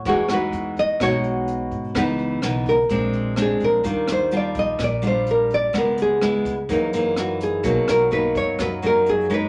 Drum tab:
HH |xxxxxxxx|xxxxxxxx|xxxxxxxx|xxxxxxxx|
SD |-r--r---|r-r---r-|-r--r---|r-r---r-|
BD |o--oo--o|o--oo--o|o--oo---|o--oo---|

HH |xxxxxxxx|
SD |-r--r---|
BD |o--oo---|